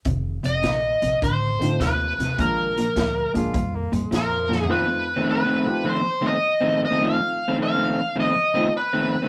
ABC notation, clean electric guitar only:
X:1
M:4/4
L:1/16
Q:"Swing" 1/4=104
K:Fmix
V:1 name="Clean electric guitar" clef=bass
[F,,C,]2 [F,,C,]2 [F,,C,]2 [F,,C,]2 [F,,D,]2 [F,,D,]2 [F,,C,]2 [F,,C,]2 | [B,,F,]2 [B,,F,]2 [B,,F,]2 [B,,F,]2 [B,,G,]2 [B,,G,]2 [B,,F,]2 [B,,F,]2 | [F,,E,A,C] z2 [F,,E,A,C] [F,,E,A,C] [F,,E,A,C] z2 [F,,E,A,C] z [F,,E,A,C] z2 [F,,E,A,C] z [F,,E,A,C] | [F,,E,A,C] z2 [F,,E,A,C] [F,,E,A,C] [F,,E,A,C] z2 [F,,E,A,C] z [F,,E,A,C] z2 [F,,E,A,C] z [F,,E,A,C] |]